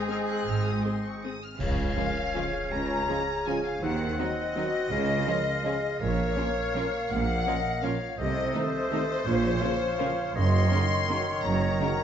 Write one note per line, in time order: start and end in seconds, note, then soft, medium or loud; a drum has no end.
0.00 1.38 G#3 medium
0.00 1.38 C4 medium
0.00 1.38 D#4 medium
0.00 1.43 G#4 medium
0.00 1.29 D#6 medium
0.07 0.15 C4 medium
0.07 0.16 G#4 medium
0.07 0.17 F6 medium
0.28 0.46 F#6 medium
0.47 0.78 G#1 medium
0.47 0.78 G#2 medium
0.47 0.65 F6 medium
0.65 0.84 D#6 medium
0.84 0.93 C4 medium
0.84 0.93 G#4 medium
0.84 1.04 C6 medium
1.05 1.24 C#6 medium
1.24 1.32 C4 medium
1.24 1.33 G#4 medium
1.24 1.43 D#6 medium
1.42 1.60 F6 medium
1.60 1.91 C#2 medium
1.60 1.91 C#3 medium
1.60 3.78 C#4 medium
1.60 2.73 F5 medium
1.60 2.68 F5 loud
1.60 3.79 G#5 medium
1.60 concert bass drum medium
1.60 crash medium
1.97 2.12 C#3 medium
1.97 2.05 F3 medium
1.97 2.11 G#3 medium
1.97 2.10 C#4 medium
1.97 2.05 C#4 medium
1.97 2.05 F4 medium
1.97 2.10 F4 medium
1.97 2.05 G#4 medium
1.97 2.37 A#4 medium
2.34 2.49 C#3 medium
2.34 2.43 F3 medium
2.34 2.49 G#3 medium
2.34 2.43 C#4 medium
2.34 2.48 C#4 medium
2.34 2.48 F4 medium
2.34 2.44 F4 medium
2.34 2.73 G#4 medium
2.34 2.43 G#4 medium
2.71 3.02 C#2 medium
2.71 3.02 C#3 medium
2.71 3.11 F4 medium
2.71 3.49 A#5 loud
2.71 3.45 A#5 loud
3.06 3.22 C#3 medium
3.06 3.22 G#3 medium
3.06 3.21 C#4 medium
3.06 3.20 F4 medium
3.06 3.17 F4 medium
3.06 3.17 G#4 medium
3.06 3.82 G#4 medium
3.10 3.18 F3 medium
3.10 3.18 C#4 medium
3.46 3.59 C#3 medium
3.46 3.56 F3 medium
3.46 3.60 G#3 medium
3.46 3.59 C#4 medium
3.46 3.55 C#4 medium
3.46 3.59 F4 medium
3.46 3.55 F4 medium
3.46 3.55 G#4 medium
3.46 3.65 G#5 medium
3.65 3.82 F5 medium
3.65 3.81 F5 medium
3.82 4.12 D#2 medium
3.82 4.12 D#3 medium
3.82 4.92 C4 medium
3.82 4.54 D#4 medium
3.82 4.21 F#5 medium
3.82 4.18 F#5 loud
3.82 4.93 F#5 medium
4.18 4.32 D#3 medium
4.18 4.26 F#3 medium
4.18 4.32 F#3 medium
4.18 4.26 C4 medium
4.18 4.32 C4 medium
4.18 4.27 D#4 medium
4.18 4.32 F#4 medium
4.18 4.27 F#4 medium
4.18 6.01 D#5 medium
4.18 6.01 D#5 loud
4.56 4.69 D#3 medium
4.56 4.64 F#3 medium
4.56 4.69 F#3 medium
4.56 4.68 C4 medium
4.56 4.64 C4 medium
4.56 4.65 D#4 medium
4.56 4.93 F#4 medium
4.56 4.69 F#4 medium
4.56 4.65 F#4 medium
4.91 5.21 C#2 medium
4.91 5.21 C#3 medium
4.91 6.00 G#3 medium
4.91 5.27 G#4 medium
4.91 5.99 F5 medium
5.26 5.40 C#3 medium
5.26 5.40 F3 medium
5.26 5.36 F3 medium
5.26 5.36 C#4 medium
5.26 5.42 C#4 medium
5.26 5.36 F4 medium
5.26 5.41 G#4 medium
5.26 5.36 G#4 medium
5.26 5.67 A#4 medium
5.64 5.77 C#3 medium
5.64 5.72 F3 medium
5.64 5.78 F3 medium
5.64 5.73 C#4 medium
5.64 5.79 C#4 medium
5.64 5.74 F4 medium
5.64 6.04 G#4 medium
5.64 5.74 G#4 medium
5.64 5.80 G#4 medium
5.99 6.30 A#1 medium
5.99 6.30 A#2 medium
5.99 7.89 A#3 medium
5.99 6.40 A#4 medium
5.99 7.10 C#5 medium
5.99 7.09 C#5 loud
5.99 7.88 F5 medium
6.36 6.51 A#2 medium
6.36 6.44 F3 medium
6.36 6.51 F3 medium
6.36 6.44 C#4 medium
6.36 6.51 C#4 medium
6.36 6.45 F4 medium
6.36 6.45 A#4 medium
6.36 6.51 A#4 medium
6.36 6.76 C#5 medium
6.74 6.87 A#2 medium
6.74 6.88 F3 medium
6.74 6.83 F3 medium
6.74 6.87 C#4 medium
6.74 6.84 C#4 medium
6.74 6.83 F4 medium
6.74 6.87 A#4 medium
6.74 6.84 A#4 medium
6.74 7.47 F5 medium
7.11 7.40 A#1 medium
7.11 7.41 A#1 medium
7.11 7.41 A#2 medium
7.11 7.83 F#5 loud
7.11 7.85 F#5 loud
7.47 7.61 A#2 medium
7.47 7.60 F3 medium
7.47 7.55 F3 medium
7.47 7.55 C#4 medium
7.47 7.61 C#4 medium
7.47 7.55 F4 medium
7.47 7.55 A#4 medium
7.47 7.61 A#4 medium
7.47 7.83 D#5 medium
7.83 7.97 A#2 medium
7.83 7.91 F3 medium
7.83 7.97 F3 medium
7.83 7.91 C#4 medium
7.83 7.97 C#4 medium
7.83 7.93 F4 medium
7.83 7.93 A#4 medium
7.83 7.98 A#4 medium
7.83 8.20 C#5 medium
7.83 8.20 F5 medium
7.83 8.19 F5 medium
8.18 8.48 C2 medium
8.18 8.48 C3 medium
8.18 9.22 A3 medium
8.18 8.56 C5 medium
8.18 9.28 D#5 medium
8.18 8.56 D#5 medium
8.18 8.54 D#5 loud
8.54 8.67 C3 medium
8.54 8.67 D#3 medium
8.54 8.62 A3 medium
8.54 8.68 A3 medium
8.54 8.62 D#4 medium
8.54 8.62 A4 medium
8.54 8.90 A4 medium
8.54 8.68 A4 medium
8.54 10.08 C5 loud
8.54 10.36 C5 loud
8.90 9.03 C3 medium
8.90 9.03 D#3 medium
8.90 9.05 A3 medium
8.90 9.01 A3 medium
8.90 9.00 D#4 medium
8.90 9.25 A4 medium
8.90 9.00 A4 medium
8.90 9.05 A4 medium
9.26 9.55 A#1 medium
9.26 9.56 A#1 medium
9.26 9.55 A#2 medium
9.26 10.38 F3 medium
9.26 9.63 F4 medium
9.26 10.34 C#5 medium
9.61 9.75 C#3 medium
9.61 9.69 F3 medium
9.61 9.76 F3 medium
9.61 9.75 A#3 medium
9.61 9.70 C#4 medium
9.61 9.70 F4 medium
9.61 9.76 F4 medium
9.61 9.70 A#4 medium
9.61 9.97 F5 medium
9.98 10.13 C#3 medium
9.98 10.12 F3 medium
9.98 10.08 F3 medium
9.98 10.11 A#3 medium
9.98 10.08 C#4 medium
9.98 10.12 F4 medium
9.98 10.07 F4 medium
9.98 10.07 A#4 medium
9.98 10.34 F5 medium
10.35 10.65 F#1 medium
10.35 10.65 F#2 medium
10.35 12.04 D#3 medium
10.35 12.04 C#5 medium
10.35 11.16 D#5 loud
10.35 11.47 C6 loud
10.35 11.43 C6 loud
10.71 10.86 C#3 medium
10.71 10.86 F#3 medium
10.71 10.79 A#3 medium
10.71 10.86 A#3 medium
10.71 10.79 C#4 medium
10.71 10.80 D#4 medium
10.71 10.86 D#4 medium
10.71 10.80 A#4 medium
11.08 11.23 C#3 medium
11.08 11.23 F#3 medium
11.08 11.16 A#3 medium
11.08 11.22 A#3 medium
11.08 11.17 C#4 medium
11.08 11.22 D#4 medium
11.08 11.17 D#4 medium
11.08 11.17 A#4 medium
11.43 11.73 F#1 medium
11.43 11.74 F#1 medium
11.43 11.74 F#2 medium
11.43 11.81 C#5 medium
11.43 12.04 A#5 loud
11.43 12.04 A#5 medium
11.79 11.94 C#3 medium
11.79 11.94 F#3 medium
11.79 11.89 A#3 medium
11.79 11.94 A#3 medium
11.79 11.89 C#4 medium
11.79 11.89 D#4 medium
11.79 11.94 D#4 medium
11.79 12.04 A#4 medium
11.79 11.89 A#4 medium